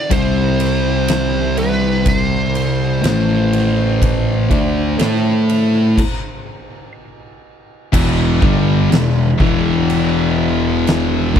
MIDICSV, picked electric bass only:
0, 0, Header, 1, 2, 480
1, 0, Start_track
1, 0, Key_signature, 1, "minor"
1, 0, Tempo, 977199
1, 55, Time_signature, 4, 2, 24, 8
1, 5599, End_track
2, 0, Start_track
2, 0, Title_t, "Picked electric bass"
2, 0, Program_c, 0, 34
2, 57, Note_on_c, 0, 36, 105
2, 1474, Note_off_c, 0, 36, 0
2, 1495, Note_on_c, 0, 33, 105
2, 2194, Note_off_c, 0, 33, 0
2, 2213, Note_on_c, 0, 38, 85
2, 2436, Note_off_c, 0, 38, 0
2, 2451, Note_on_c, 0, 45, 92
2, 2912, Note_off_c, 0, 45, 0
2, 3897, Note_on_c, 0, 28, 98
2, 4119, Note_off_c, 0, 28, 0
2, 4139, Note_on_c, 0, 31, 90
2, 4360, Note_off_c, 0, 31, 0
2, 4375, Note_on_c, 0, 28, 83
2, 4599, Note_off_c, 0, 28, 0
2, 4621, Note_on_c, 0, 28, 92
2, 5562, Note_off_c, 0, 28, 0
2, 5582, Note_on_c, 0, 31, 108
2, 5599, Note_off_c, 0, 31, 0
2, 5599, End_track
0, 0, End_of_file